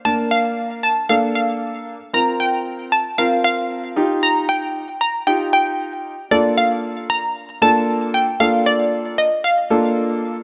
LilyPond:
<<
  \new Staff \with { instrumentName = "Synth pluck" } { \time 4/4 \key bes \major \tempo 4 = 115 a''8 f''4 a''8 f''8 f''4 r8 | bes''8 g''4 a''8 f''8 f''4 r8 | bes''8 g''4 bes''8 g''8 g''4 r8 | d''8 f''4 bes''4 a''4 g''8 |
f''8 d''4 ees''8 f''4 r4 | }
  \new Staff \with { instrumentName = "Grand piano" } { \time 4/4 \key bes \major <bes d' bes'>4. r8 <bes d' a'>4. r8 | <c' f' bes'>4. r8 <c' f' bes'>4. <ees' f' g'>8~ | <ees' f' g'>4 r4 <ees' f' g'>4. r8 | <bes d' f' a'>4. r4 <bes d' f' a'>4 r8 |
<bes d' f' a'>4. r4 <bes d' f' a'>4 r8 | }
>>